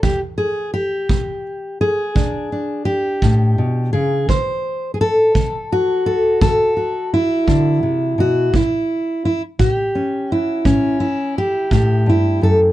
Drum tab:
BD |o--o--o--o--|o--o--o--o--|o--o--o--o--|